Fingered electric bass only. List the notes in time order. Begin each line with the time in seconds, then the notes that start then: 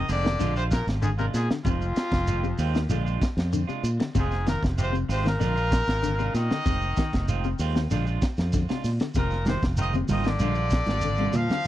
0.09 F1
0.41 A#1
0.87 G#1
1.34 A#2
1.50 muted fingered electric bass stroke
1.65 F1
2.12 F1
2.59 D#2
2.89 A#1
3.37 F2
3.68 muted fingered electric bass stroke
3.83 A#2
4.15 F1
4.63 F1
5.09 G#1
5.41 A#1
5.88 G#1
6.34 A#2
6.51 muted fingered electric bass stroke
6.66 F1
7.13 F1
7.59 D#2
7.91 A#1
8.38 F2
8.69 muted fingered electric bass stroke
8.84 A#2
9.16 F1
9.62 F1
10.09 G#1
10.40 A#1
10.87 G#1
11.34 A#2
11.50 muted fingered electric bass stroke